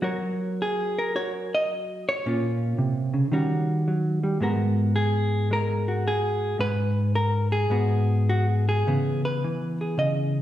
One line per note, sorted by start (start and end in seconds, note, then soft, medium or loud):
0.02 2.24 F#3 medium
0.02 1.14 F#4 soft
0.02 0.96 A#4 soft
0.02 0.61 C#5 soft
0.62 1.15 G#4 medium
0.99 1.71 A#4 medium
1.15 2.23 F#4 medium
1.15 1.32 C#5 medium
1.55 2.08 D#5 medium
2.09 4.42 C#5 medium
2.26 2.78 A#2 medium
2.26 3.32 A#3 soft
2.26 3.32 C#4 soft
2.26 3.33 F4 soft
2.78 3.15 C3 medium
3.14 3.31 C#3 medium
3.32 4.38 D#3 medium
3.32 3.87 G3 soft
3.32 4.39 C#4 soft
3.32 4.43 F#4 soft
3.88 4.23 F#3 medium
4.23 4.41 G3 medium
4.40 6.58 G#2 medium
4.40 5.51 G#3 soft
4.40 7.70 B3 soft
4.40 5.87 F#4 soft
4.40 4.95 A#4 soft
4.96 5.50 G#4 medium
5.51 7.18 G#3 medium
5.51 6.07 A#4 medium
5.88 6.58 F#4 soft
6.08 6.60 G#4 medium
6.59 7.69 G#2 medium
6.59 7.15 B4 loud
7.15 7.52 A#4 medium
7.52 8.67 G#4 medium
7.70 8.87 G#2 medium
7.70 8.85 G#3 soft
7.70 8.86 B3 soft
7.70 8.28 F#4 soft
8.29 8.45 F#4 medium
8.69 9.25 G#4 medium
8.87 9.44 C#3 medium
8.87 9.43 E3 soft
8.87 10.42 B3 soft
9.25 9.98 B4 medium
9.44 10.42 E3 medium
9.81 10.42 G#4 soft
9.98 10.42 C#3 medium
9.98 10.42 D#5 medium